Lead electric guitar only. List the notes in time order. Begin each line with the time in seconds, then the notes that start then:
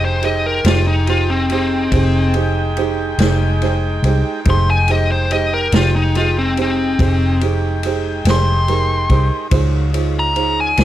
0.05 C5
0.25 D#5
0.46 A#4
0.67 F4
0.87 D#4
1.10 F4
1.30 C4
1.52 C4
4.50 C6
4.70 G#5
4.92 D#5
5.12 C5
5.33 D#5
5.54 A#4
5.75 F4
5.96 D#4
6.17 F4
6.39 C4
6.61 C4
8.30 C6
10.19 A#5
10.60 G#5